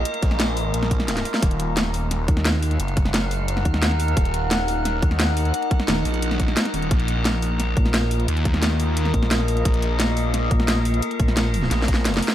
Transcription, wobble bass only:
\new Staff \with { instrumentName = "Wobble bass" } { \clef bass \time 4/4 \key ees \minor \tempo 4 = 175 r1 | r2 r8 ees,4. | r2 r8 ees,4. | r2 r8 ees,4. |
r4 ees,,8 r2 r8 | r2 r8 bes,,4. | r2 r8 bes,,4. | r2 r8 bes,,4. |
r8 bes,,4. r2 | }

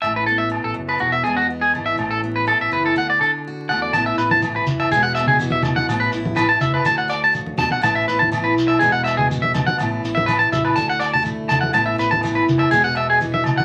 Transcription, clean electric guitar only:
\new Staff \with { instrumentName = "Clean electric guitar" } { \time 4/4 \key e \mixolydian \tempo 4 = 123 e''16 b'16 a'16 e''16 r16 a'16 r16 b'16 fis'16 e''16 gis'16 fis'16 r16 gis'16 r16 e''16 | r16 a'16 r16 b'16 a'16 e''16 b'16 a'16 fis''16 d''16 a'16 r8. fis''16 d''16 | a''16 e''16 b'16 a''16 r16 b'16 r16 e''16 gis'16 fis''16 e''16 gis'16 r16 e''16 r16 fis''16 | r16 b'16 r8 b'16 a''16 e''16 b'16 a''16 fis''16 d''16 a''16 r8 a''16 fis''16 |
a''16 e''16 b'16 a''16 r16 b'16 r16 e''16 gis'16 fis''16 e''16 gis'16 r16 e''16 r16 fis''16 | r8. e''16 b'16 a''16 e''16 b'16 a''16 fis''16 d''16 a''16 r8 a''16 fis''16 | a''16 e''16 b'16 a''16 r16 b'16 r16 e''16 gis'16 fis''16 e''16 gis'16 r16 e''16 r16 fis''16 | }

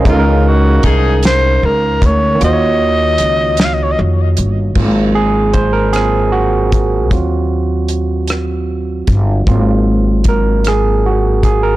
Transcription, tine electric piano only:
\new Staff \with { instrumentName = "Tine electric piano" } { \time 6/8 \key aes \mixolydian \tempo 4. = 51 << { <bes' ees''>16 r2 r8. | r2. | r8 aes'8 c''16 bes'16 aes'8 ges'4~ | ges'4. r4. |
r4 bes'8 aes'8 ges'8 aes'16 bes'16 | } \\ { <aes des' ees' a' bes' f''>2. | <ees bes f' ges' c'' des''>2. | <ges bes c' f'>4. <ges bes c' f'>8 r4 | <ges c' f'>2. |
<ges bes c' f'>4. r4. | } >> }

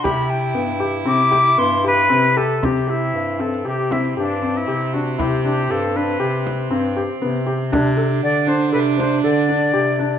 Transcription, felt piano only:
\new Staff \with { instrumentName = "Felt piano" } { \time 5/4 \key c \major \tempo 4 = 118 g'4 b8 g'8 c'8 g'8 b8 g'8 c'8 g'8 | c'8 g'4 c'8 g'8 c'8 g'8 c'8 g'8 d'8 | e'8 d'8 g'8 d'8 g'4 c'8 g'8 b8 g'8 | d'8 a'4 d'8 a'8 d'8 a'8 d'8 g'8 d'8 | }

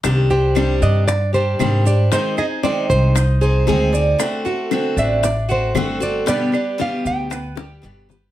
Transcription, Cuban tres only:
\new Staff \with { instrumentName = "Cuban tres" } { \time 4/4 \key c \minor \tempo 4 = 115 r8 c''4 d'4 g'8 c''4 | ees'8 aes'8 c''4 ees'8 c''4 d''8~ | d''8 a'4 d'4 fis'8 a'4 | b8 d'8 g'4 b8 g'4 b'8 | }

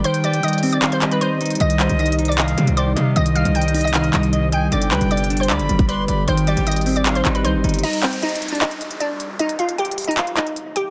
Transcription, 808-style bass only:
\new Staff \with { instrumentName = "808-style bass" } { \clef bass \time 4/4 \key c \minor \tempo 4 = 154 r1 | c,8. c,4.~ c,16 c16 c,8. c8 | c,8. c,4.~ c,16 c,4. | g,,8 d,16 g,,4~ g,,16 d,16 g,,16 g,,4 g,,8 |
aes,,8. aes,,4.~ aes,,16 aes,,8 c,16 aes,,16 g,,8 | r1 | r1 | }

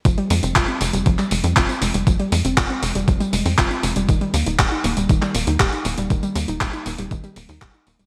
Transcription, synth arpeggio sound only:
\new Staff \with { instrumentName = "Synth arpeggio sound" } { \time 4/4 \key f \minor \tempo 4 = 119 f16 g16 aes16 c'16 f'16 c'16 aes16 g16 f16 g16 aes16 c'16 f'16 c'16 aes16 g16 | f16 g16 aes16 c'16 f'16 c'16 aes16 g16 f16 g16 aes16 c'16 f'16 c'16 aes16 g16 | ees16 g16 bes16 ees'16 g'16 ees'16 bes16 g16 ees16 g16 bes16 ees'16 g'16 ees'16 bes16 g16 | ees16 g16 bes16 ees'16 g'16 ees'16 bes16 g16 ees16 g16 bes16 ees'16 g'16 ees'16 bes16 g16 | }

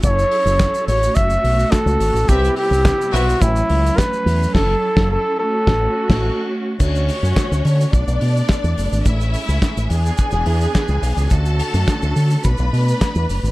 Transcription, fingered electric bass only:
\new Staff \with { instrumentName = "Fingered electric bass" } { \clef bass \time 4/4 \key a \major \tempo 4 = 106 fis,,8 r16 fis,,8 r16 a,,8 fis,,8 b,,8 r16 cis,16 gis,,16 a,,16 | c,8 r16 c,8 r16 b,,8 a,,8 cis,8 r8 e,8 | fis,,8 r16 fis,,8 r8. a,,8 r16 a,,8 r8. | d,8. fis,16 r16 d,16 d8 b,,16 b,,16 b,8 r16 e,16 fis,,16 gis,,16 |
a,,8. cis,16 r16 a,,16 e,8 r16 e,,16 e,8 r16 cis,16 b,,16 cis,16 | d,8. fis,16 r16 d,16 d8 b,,16 b,,16 b,8 r16 e,16 fis,,16 gis,,16 | }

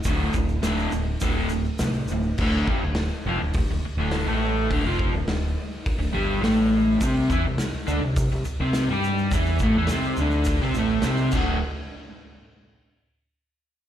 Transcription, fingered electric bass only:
\new Staff \with { instrumentName = "Fingered electric bass" } { \clef bass \time 4/4 \key c \lydian \tempo 4 = 104 d,,8 d,,8 d,,8 d,,8 d,,4 c,8 d,,8 | d,,8 g,,16 d,,8 r16 f,,16 d,,16 d,,16 d,,16 r16 d,,8 a,,8. | d,,16 f,,8 d,,16 d,,8 r8. d,,16 g,,8 a,,4 | c,8 e,16 c,8 r16 d,16 c,16 c,16 c,16 r16 c,8 g,8. |
e,8 a,,16 e,16 c,8 d,8. c,16 a,,8 c,8 d,,8 | r1 | }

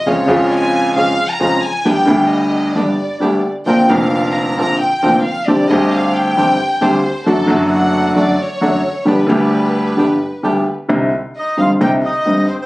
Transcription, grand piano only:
\new Staff \with { instrumentName = "Grand piano" } { \clef bass \time 4/4 \key c \minor \tempo 4 = 133 <f, des f aes f'>8 <f, des f aes f'>4. <f, des f aes f'>8 r8 <f, des f aes f'>8 r8 | <g,, g, d g b g'>8 <d, d g b g'>4. <g,, g, d g b g'>8 r8 <d, d g b g'>8 r8 | <bes,, bes, d bes c' f'>8 <f,, f, d bes c' f'>4. <bes,, bes, d bes c' f'>8 r8 <f,, f, d bes c' f'>8 r8 | <g,, g, d g c' g'>8 <d, d g c' g'>4. <g,, g, d g c' g'>8 r8 <d, d g c' g'>8 r8 |
<fis, d fis a fis'>8 <fis, d fis a fis'>4. <fis, d fis a fis'>8 r8 <fis, d fis a fis'>8 r8 | <g,, g, d g b g'>8 <d, d g b g'>4. <g,, g, d g b g'>8 r8 <d, d g b g'>8 r8 | <c, c d g c' ees'>8 r4 <g,, g, d g c' ees'>8 <c, c d g c' ees'>8 r8 <g,, g, d g c' ees'>8 r8 | }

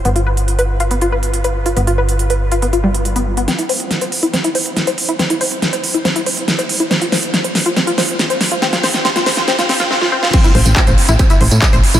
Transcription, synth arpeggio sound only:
\new Staff \with { instrumentName = "Synth arpeggio sound" } { \time 4/4 \key c \major \tempo 4 = 140 b16 f'16 b'16 r8 b'16 r16 f'16 b16 f'16 b'16 r8 b'16 r16 f'16 | b16 f'16 b'16 r8 b'16 r16 f'16 b16 f'16 g16 r8 b16 r16 b16 | c'16 e'16 c''16 r8 c''16 r16 e'16 c'16 e'16 c''16 r8 c''16 r16 e'16 | c'16 e'16 c''16 r8 c''16 r16 e'16 c'16 e'16 c''16 r8 c''16 r16 e'16 |
c'16 f'16 c''16 r8 c''16 r16 f'16 c'16 f'16 c''16 r8 c''16 r16 f'16 | c'16 f'16 c''16 r16 c'16 f'16 c''16 r16 c'16 f'16 c'16 f'16 c'16 f'16 c'16 f'16 | c'16 e'16 c''16 r8 c''16 r16 e'16 c'16 e'16 c''16 r8 c''16 r16 e'16 | }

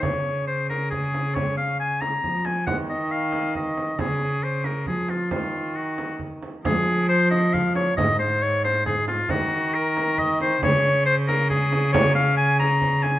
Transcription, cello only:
\new Staff \with { instrumentName = "Cello" } { \clef bass \time 3/4 \key des \major \tempo 4 = 137 des2.~ | des2 f4 | ees2. | des2 f4 |
ees2~ ees8 r8 | f2. | aes,2. | ees2. |
des2.~ | des2. | }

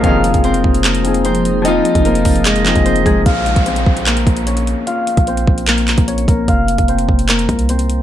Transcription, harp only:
\new Staff \with { instrumentName = "Harp" } { \time 4/4 \key bes \minor \tempo 4 = 149 <f' f''>4 <c' c''>4 <bes bes'>4 <c' c''>8 r8 | <ees' ees''>4 <bes bes'>4 <aes aes'>4 <c' c''>8 <aes aes'>8 | <f' f''>4 <c' c''>4 <bes bes'>4 <des' des''>8 r8 | <f' f''>4 <c' c''>4 <bes bes'>4 <des' des''>8 <bes bes'>8 |
<f' f''>4 <c' c''>4 <bes bes'>4 <c' c''>8 r8 | }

